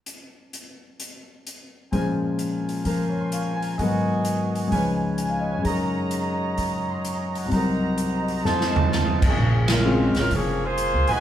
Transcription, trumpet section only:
1.92 F4 A#4 G#5
2.86 C5 F5 A#5
3.09 A#5
3.20 C6
3.31 C#6
3.44 F5
3.55 G#5
3.66 A#5
3.78 F#4 D#5 G#5
4.72 F4 B4 C#5 G#5
5.65 F#4 C#5 D#5 A#5
6.89 C6
7.05 C#6
7.21 D#6
7.37 F#5
7.52 F#4 C5 D#5 A#5
8.45 F4 C5 D#5 A5
8.92 C6
9.03 D#6
9.15 F5
9.27 A5
11.09 F#4 B4 D#5 G#5

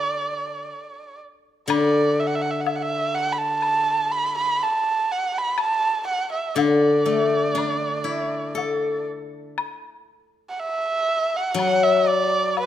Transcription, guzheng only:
Already playing: D3
1.68 D3
6.56 D3
7.06 A3
7.55 D4
8.04 E4
8.55 A4
11.54 F#3

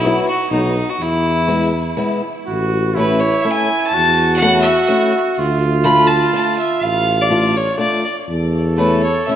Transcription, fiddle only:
0.00 E4
0.28 F#4
0.51 D#4
0.89 F#4
1.01 E4
2.99 B4
3.20 C#5
3.41 E5
3.51 G#5
3.87 A5
4.36 F#5
4.61 E5
4.85 E5
5.84 B5
6.07 A5
6.35 A5
6.58 E5
6.83 F5
7.21 D5
7.56 C#5
7.78 D5
8.04 D5
8.76 B4
9.03 C#5
9.26 E5

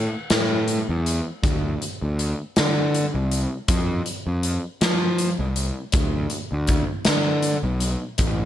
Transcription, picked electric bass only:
0.32 A2
0.89 E2
1.43 D2
2.02 D2
2.59 D3
3.15 C2
3.69 F2
4.27 F2
4.82 F3
5.39 C2
5.94 D2
6.52 D2
7.08 D3
7.63 B1
8.19 A1

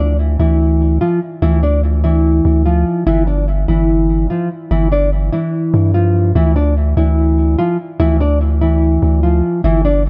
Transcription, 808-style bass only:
Already playing: D2
0.40 D2
1.42 D2
2.45 D2
3.07 G1
3.68 G1
4.71 G1
5.74 G2
6.35 D2
6.97 D2
8.00 D2
9.03 D2
9.64 G1

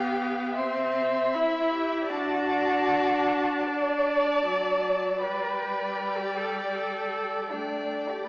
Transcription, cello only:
Already playing: G4
1.71 G4
2.09 F#4
3.67 D5
5.20 B4
6.18 G4
6.36 A4
6.56 G4
6.74 A4
7.50 D4
8.09 G4

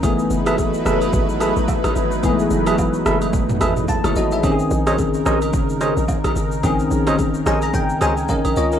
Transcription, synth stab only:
0.46 G#4 A4 B4 E5
0.85 G#4 A4 B4 E5
1.40 G#4 A4 B4 E5
2.66 G#4 A4 B4 E5
3.05 G#4 A4 B4 E5
3.61 G#4 A4 B4 E5
4.86 G#4 C5 C#5 D#5
5.25 G#4 C5 C#5 D#5
5.81 G#4 C5 C#5 D#5
7.07 G#4 C5 C#5 D#5
7.46 G#4 C5 C#5 D#5
8.01 G#4 C5 C#5 D#5

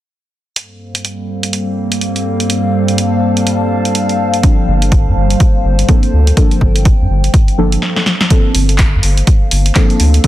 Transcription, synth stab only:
4.43 F3 A#3 C4 D4 A4
5.89 F3 A#3 C4 D4 A4
6.37 F3 A#3 C4 D4 A4
7.58 F3 A#3 C4 D4 A4
8.30 F3 A#3 C4 D4 A4
9.76 F3 A#3 C4 D4 A4
10.24 F3 A#3 C4

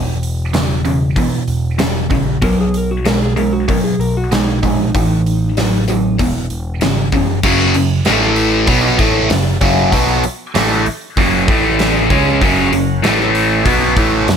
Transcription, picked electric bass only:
Already playing: E1
1.48 E1
1.80 E1
2.11 A#1
2.42 B1
3.99 B1
4.32 B1
4.63 A#1
4.95 A1
6.20 E1
6.51 E1
6.82 G#1
7.12 F#1
7.43 F#1
7.75 F#1
8.07 A1
8.67 B1
8.99 A1
9.31 F#1
9.61 F#1
9.92 B1
10.24 muted picked electric bass stroke
10.56 A1
10.88 muted picked electric bass stroke
11.17 F#1
11.48 A1
12.10 C#2
12.41 F#1
12.72 F#1
13.04 A1
13.66 B1
13.97 A1
14.29 F#1

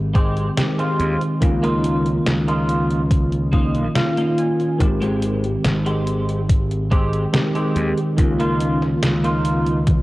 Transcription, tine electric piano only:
Already playing: D#3 G#3 C4 G4
0.57 D#3 G#3 C4 G4
1.41 D#3 A#3 C#4 F4
3.95 D#3 A#3 C#4 F4
4.79 D#3 G#3 C4 G4
7.33 D#3 G#3 C4 G4
8.16 D#3 A#3 C#4 F4

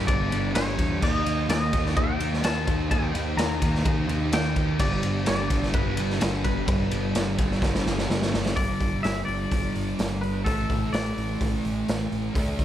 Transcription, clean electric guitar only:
0.07 D5
0.55 C#5
1.03 D#5
1.50 D#5
1.86 D5
1.97 G5
2.45 A5
2.91 G5
3.37 A#5
4.34 G5
4.80 D5
5.27 D5
5.74 B4
6.44 B4
8.56 D5
9.03 E5
9.25 D5
10.21 B4
10.44 A4
10.93 D5

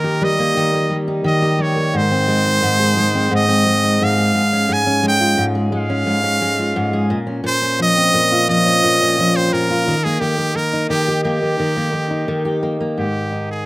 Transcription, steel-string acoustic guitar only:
Already playing: D#3 A#3 D#4
0.04 G4
0.21 G3
0.39 A#3
0.57 D#3
0.74 A#3
0.90 G3
1.08 D#4
1.24 D#3
1.42 G4
1.59 G3
1.76 A#3
1.94 G#2
2.11 C4
2.28 G#3
2.45 D#4
2.63 G#2
2.80 G#4
2.97 G#3
3.15 C4
3.31 G#2
3.49 C4
3.67 G#3
3.84 D#4
4.02 G#2
4.18 G#4
4.35 G#2
4.53 C#4
4.69 G#2
4.87 C#4
5.03 G#3
5.20 F4
5.37 G#2
5.55 G#4
5.72 G#3
5.90 C#4
6.07 G#2
6.24 C#4
6.41 G#3
6.59 F4
6.76 G#2
6.93 G#4
7.10 A#2
7.27 C#4
7.44 A#2
7.62 C#4
7.79 F3
7.96 C4
8.14 A#2
8.32 F4
8.49 F3
8.66 C#4
8.84 A#2
9.01 C#4
9.19 F3
9.36 C4
9.53 A#2
9.71 F4
9.87 D#3
10.06 A#3
10.21 D#3
10.38 A#3
10.55 A#3
10.73 D#4
10.90 D#3
11.08 G4
11.25 A#3
11.43 A#3
11.59 D#3
11.77 A#3
11.93 A#3
12.11 D#4
12.28 D#3
12.45 G4
12.63 A#3
12.81 A#3
12.97 G#2
13.32 D#4

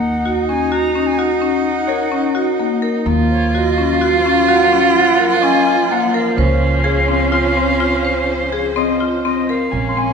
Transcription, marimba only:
Already playing: A#3
0.26 F#4
0.49 C#4
0.72 F#4
0.95 C#4
1.19 F#4
1.42 C#4
1.89 A#4
2.12 C#4
2.35 F#4
2.60 A#3
2.82 A#4
3.06 A#3
3.55 F#4
3.78 C#4
4.01 F#4
4.26 C#4
4.48 F#4
4.73 C#4
5.19 A#4
5.43 C#4
5.67 F4
5.92 A#3
6.14 A#4
6.38 C5
6.84 G#4
7.08 C4
7.32 F4
7.57 C4
7.80 F4
8.05 C5
8.52 G#4
8.76 C4
9.00 F4
9.25 C4
9.49 A#4
9.97 C4

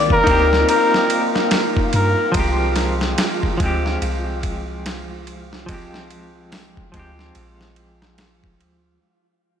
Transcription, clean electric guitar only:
Already playing: D#3 A#3 C4 G4
0.24 A#3 D#4
0.28 C4 G4
2.32 F3 G#3
2.37 C4 G4
3.57 F3 G#3
3.63 C4 G4
5.66 F3 G#3
5.71 C4 G4
6.92 F3 G#3
6.97 C4 G4

